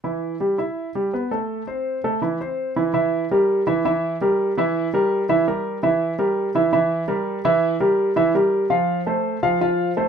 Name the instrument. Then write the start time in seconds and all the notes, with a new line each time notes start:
grand piano
0.04 E3 E4
0.40 G3 G4
0.58 E4 E5
0.95 G3 G4
1.13 B3 B4
1.31 A3 A4
1.67 C4 C5
2.04 A3 A4
2.22 E3 E4
2.40 C4 C5
2.76 E3 E4
2.94 E3 E4 E5
3.31 G3 G4 A#4
3.67 E3 E4 E5
3.85 E3 E4 E5
4.21 G3 G4 A#4
4.57 E3 E4 E5
4.93 G3 G4 A#4
5.29 E3 E4 E5
5.47 G3 G4 A#4
5.83 E3 E4 E5
6.19 G3 G4 A#4
6.55 E3 E4 E5
6.73 E3 E4 E5
7.08 G3 G4 A#4
7.45 E3 E4 E5
7.80 G3 G4 A#4
8.16 E3 E4 E5
8.35 G3 G4 A#4
8.70 F3 F4 F5
9.06 A3 A4 C5
9.43 F3 F4 F5
9.61 F3 F4 F5
9.97 A3 A4 C5